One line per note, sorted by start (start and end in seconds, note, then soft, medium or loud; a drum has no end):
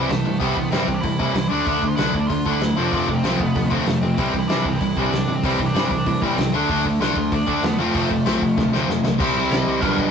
0.00 0.39 C3 medium
0.00 0.41 G3 loud
0.00 0.42 C4 medium
0.09 0.20 C2 loud
0.09 0.24 C3 medium
0.09 0.24 E3 medium
0.09 0.24 G3 medium
0.09 0.39 A3 medium
0.09 snare loud
0.09 open hi-hat medium
0.25 0.35 G1 medium
0.25 0.39 C3 medium
0.25 0.39 E3 medium
0.25 0.40 G3 medium
0.40 0.51 C2 medium
0.40 0.55 C3 medium
0.40 0.55 E3 medium
0.40 0.56 G3 loud
0.40 0.70 B3 medium
0.40 0.57 C4 medium
0.40 kick medium
0.40 open hi-hat medium
0.56 0.67 C2 medium
0.56 0.70 C3 medium
0.56 0.71 E3 medium
0.56 0.71 G3 medium
0.56 kick medium
0.71 0.83 G1 medium
0.71 0.87 C3 medium
0.71 0.87 E3 medium
0.71 0.88 G3 medium
0.71 0.96 C4 medium
0.71 0.88 C4 medium
0.71 snare loud
0.71 open hi-hat medium
0.88 0.98 C2 medium
0.88 1.02 C3 medium
0.88 1.03 E3 medium
0.88 1.02 G3 medium
0.88 kick medium
0.94 1.01 D4 medium
1.01 1.14 A2 loud
1.01 1.18 C3 medium
1.01 1.18 E3 medium
1.01 1.18 G3 medium
1.01 1.48 E4 medium
1.01 kick medium
1.01 open hi-hat medium
1.19 1.29 A2 medium
1.19 1.33 C3 medium
1.19 1.33 E3 medium
1.19 1.35 G3 medium
1.19 1.35 C4 loud
1.19 kick medium
1.34 1.44 C2 loud
1.34 1.49 C3 medium
1.34 1.49 E3 medium
1.34 1.50 G3 medium
1.34 snare loud
1.34 open hi-hat medium
1.49 1.60 D2 medium
1.49 1.65 D3 medium
1.49 1.66 A3 medium
1.49 1.65 D4 medium
1.49 1.66 D4 medium
1.66 1.77 D2 medium
1.66 1.81 D3 medium
1.66 1.82 A3 medium
1.66 1.88 D4 loud
1.66 1.82 D4 medium
1.66 kick loud
1.66 open hi-hat soft
1.82 1.92 D2 medium
1.82 1.96 D3 medium
1.82 1.97 A3 medium
1.82 kick medium
1.88 1.96 F4 loud
1.96 2.08 C2 medium
1.96 2.13 D3 medium
1.96 2.13 A3 medium
1.96 2.13 D4 medium
1.96 2.20 E4 medium
1.96 snare loud
1.96 open hi-hat soft
2.14 2.24 D2 medium
2.14 2.28 D3 medium
2.14 2.29 A3 medium
2.14 kick medium
2.20 2.27 D4 loud
2.28 2.39 D2 medium
2.28 2.44 D3 medium
2.28 2.44 A3 medium
2.28 2.51 F4 loud
2.28 kick medium
2.28 open hi-hat medium
2.45 2.55 D2 medium
2.45 2.60 D3 medium
2.45 2.61 A3 medium
2.45 2.61 D4 medium
2.45 kick medium
2.52 2.83 E4 medium
2.60 2.70 D2 medium
2.60 2.76 D3 medium
2.60 2.76 A3 medium
2.60 snare medium
2.60 open hi-hat soft
2.76 2.86 F1 medium
2.76 2.91 F2 medium
2.76 2.92 C3 medium
2.76 2.91 F3 medium
2.76 2.92 A3 medium
2.76 2.92 C4 medium
2.84 3.17 D4 medium
2.92 3.02 F1 medium
2.92 3.07 F2 medium
2.92 3.07 C3 medium
2.92 3.07 F3 medium
2.92 3.07 A3 medium
2.92 3.08 C4 medium
2.92 kick loud
2.92 open hi-hat medium
3.08 3.18 F1 medium
3.08 3.22 F2 medium
3.08 3.23 C3 medium
3.08 3.22 F3 medium
3.08 3.23 A3 medium
3.08 kick medium
3.13 3.37 C4 medium
3.23 3.33 C2 medium
3.23 3.39 F2 medium
3.23 3.39 C3 loud
3.23 3.38 F3 medium
3.23 3.38 A3 medium
3.23 3.39 C4 loud
3.23 snare medium
3.23 open hi-hat medium
3.37 3.50 F1 medium
3.37 3.54 F2 medium
3.37 3.54 C3 medium
3.37 3.54 F3 medium
3.37 3.54 A3 medium
3.37 3.67 B3 medium
3.37 kick medium
3.55 3.65 D2 medium
3.55 3.70 F2 medium
3.55 3.71 C3 medium
3.55 3.69 F3 medium
3.55 3.70 A3 medium
3.55 kick loud
3.55 open hi-hat medium
3.67 3.81 D2 medium
3.67 3.85 F3 medium
3.67 3.98 A3 medium
3.67 3.85 A3 medium
3.71 3.85 F2 medium
3.71 3.85 C3 medium
3.71 3.86 C4 medium
3.71 kick medium
3.86 3.96 F1 loud
3.86 4.01 F2 medium
3.86 4.01 C3 medium
3.86 4.01 F3 medium
3.86 4.01 A3 medium
3.86 snare medium
3.86 open hi-hat soft
4.01 4.12 F2 medium
4.01 4.17 F2 medium
4.01 4.17 C3 medium
4.01 4.17 F3 medium
4.01 4.17 A3 medium
4.01 4.14 C4 medium
4.15 4.28 C2 medium
4.15 4.33 C3 medium
4.15 4.33 E3 medium
4.15 4.33 G3 medium
4.15 4.41 C4 medium
4.15 4.33 C4 medium
4.15 kick loud
4.15 open hi-hat medium
4.34 4.44 C2 medium
4.34 4.48 C3 medium
4.34 4.48 E3 medium
4.34 4.49 G3 medium
4.34 kick medium
4.39 4.48 E4 medium
4.48 4.59 A1 medium
4.48 4.64 C3 medium
4.48 4.65 E3 medium
4.48 4.65 G3 loud
4.48 4.65 C4 medium
4.48 4.73 D4 medium
4.48 snare loud
4.48 open hi-hat soft
4.65 4.75 C2 medium
4.65 4.80 C3 medium
4.65 4.80 E3 medium
4.65 4.80 G3 medium
4.65 kick medium
4.70 4.80 C4 medium
4.78 4.91 C2 medium
4.78 4.95 G3 medium
4.78 5.01 E4 medium
4.78 kick medium
4.78 open hi-hat medium
4.82 4.96 C3 medium
4.82 4.96 E3 medium
4.96 5.06 C2 medium
4.96 5.12 C3 medium
4.96 5.12 E3 medium
4.96 5.13 G3 medium
4.96 5.11 C4 medium
4.96 kick medium
5.02 5.35 D4 medium
5.12 5.22 C2 medium
5.12 5.27 C3 medium
5.12 5.27 E3 medium
5.12 5.27 G3 medium
5.12 snare medium
5.12 open hi-hat medium
5.28 5.38 G1 medium
5.28 5.42 C3 medium
5.28 5.43 E3 medium
5.28 5.42 G3 medium
5.34 5.67 C4 medium
5.43 5.53 C2 medium
5.43 5.59 C3 medium
5.43 5.59 E3 medium
5.43 5.59 G3 loud
5.43 5.59 C4 loud
5.43 kick loud
5.43 open hi-hat medium
5.59 5.69 C2 medium
5.59 5.73 C3 medium
5.59 5.74 E3 medium
5.59 5.74 G3 medium
5.59 kick medium
5.66 5.89 D4 medium
5.74 5.84 G1 medium
5.74 5.89 C3 medium
5.74 5.90 E3 medium
5.74 5.90 G3 loud
5.74 5.90 C4 medium
5.74 snare loud
5.74 open hi-hat medium
5.90 6.00 C2 medium
5.90 6.05 C3 medium
5.90 6.05 E3 medium
5.90 6.05 G3 medium
5.90 6.23 D4 medium
5.90 kick medium
6.06 6.16 A2 loud
6.06 6.21 C3 medium
6.06 6.21 E3 medium
6.06 6.21 G3 medium
6.06 kick medium
6.06 open hi-hat medium
6.21 6.32 A2 medium
6.21 6.37 C3 medium
6.21 6.37 E3 medium
6.21 6.38 G3 medium
6.21 6.51 C4 medium
6.21 6.37 C4 medium
6.21 kick medium
6.37 6.47 C2 medium
6.37 6.52 C3 medium
6.37 6.53 E3 medium
6.37 6.52 G3 medium
6.37 snare loud
6.37 open hi-hat medium
6.52 6.62 D2 medium
6.52 6.68 D3 loud
6.52 6.69 A3 loud
6.52 6.69 D4 medium
6.69 6.79 D2 loud
6.69 6.84 D3 medium
6.69 6.84 A3 medium
6.69 6.85 D4 loud
6.69 kick loud
6.69 open hi-hat medium
6.84 6.94 D2 medium
6.84 6.99 D3 medium
6.84 6.99 A3 medium
6.84 kick medium
6.99 7.09 C2 medium
6.99 7.15 D3 medium
6.99 7.16 A3 medium
6.99 7.16 D4 loud
6.99 7.33 F4 loud
6.99 snare loud
6.99 open hi-hat medium
7.16 7.26 D2 loud
7.16 7.31 D3 medium
7.16 7.31 A3 medium
7.16 kick medium
7.32 7.42 D2 loud
7.32 7.45 D3 medium
7.32 7.46 A3 medium
7.32 7.65 D4 medium
7.32 kick loud
7.32 open hi-hat medium
7.47 7.58 D2 medium
7.47 7.62 D3 medium
7.47 7.62 A3 loud
7.47 7.62 D4 loud
7.47 kick medium
7.63 7.73 E2 medium
7.63 7.78 D3 medium
7.63 7.78 A3 medium
7.63 7.79 B3 medium
7.63 snare loud
7.63 open hi-hat medium
7.78 7.88 F1 medium
7.78 7.94 F2 medium
7.78 7.94 C3 medium
7.78 7.93 F3 medium
7.78 7.94 A3 medium
7.78 8.85 A3 medium
7.78 7.94 C4 loud
7.94 8.04 F1 loud
7.94 8.10 F2 medium
7.94 8.10 C3 medium
7.94 8.09 F3 medium
7.94 8.09 A3 loud
7.94 8.10 C4 loud
7.94 kick loud
7.94 open hi-hat medium
8.10 8.20 F1 medium
8.10 8.25 F2 medium
8.10 8.25 C3 medium
8.10 8.24 F3 medium
8.10 8.25 A3 medium
8.10 kick medium
8.26 8.36 C2 medium
8.26 8.40 F2 medium
8.26 8.40 C3 medium
8.26 8.40 F3 medium
8.26 8.40 A3 medium
8.26 8.41 C4 loud
8.26 snare loud
8.26 open hi-hat medium
8.41 8.52 F1 medium
8.41 8.56 F2 medium
8.41 8.56 C3 medium
8.41 8.56 F3 medium
8.41 8.56 A3 medium
8.41 kick medium
8.57 8.67 D2 loud
8.57 8.71 F2 medium
8.57 8.72 C3 medium
8.57 8.72 F3 medium
8.57 8.72 A3 medium
8.57 kick medium
8.57 snare medium
8.72 8.83 D2 medium
8.72 8.87 F2 medium
8.72 8.87 C3 medium
8.72 8.88 F3 medium
8.72 8.88 A3 medium
8.72 8.89 C4 medium
8.72 snare medium
8.88 8.99 F1 loud
8.88 9.01 F2 medium
8.88 9.02 C3 medium
8.88 9.03 F3 medium
8.88 9.03 A3 medium
8.88 snare medium
9.03 9.14 B1 medium
9.03 9.18 F2 medium
9.03 9.17 C3 medium
9.03 9.18 F3 medium
9.03 9.19 A3 medium
9.03 snare medium
9.18 9.32 C2 loud
9.18 9.81 C3 medium
9.18 9.82 G3 loud
9.18 9.83 C4 loud
9.18 kick loud
9.18 crash loud
9.18 crash medium
9.22 9.83 E4 loud
9.35 9.47 C2 medium
9.35 9.51 C5 loud
9.51 9.62 C2 loud
9.51 9.82 D#5 loud
9.51 snare loud
9.51 crash medium
9.66 9.78 C2 loud
9.80 10.06 B1 loud
9.80 10.11 G2 medium
9.80 10.11 B2 loud
9.80 10.11 D3 medium
9.80 10.11 G3 medium
9.80 9.97 A#4 medium
9.80 kick loud
9.80 crash medium
9.84 10.11 B3 medium
9.84 10.11 D4 loud
9.98 10.11 D#5 medium
9.98 kick medium